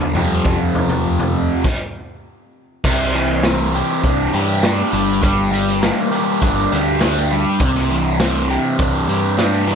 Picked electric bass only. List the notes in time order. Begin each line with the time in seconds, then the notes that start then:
0.17 F2
1.06 F2
2.84 C2
4.04 C2
4.34 G2
4.93 G1
6.42 G1
6.72 D2
7.60 C2
8.79 C2
9.08 G2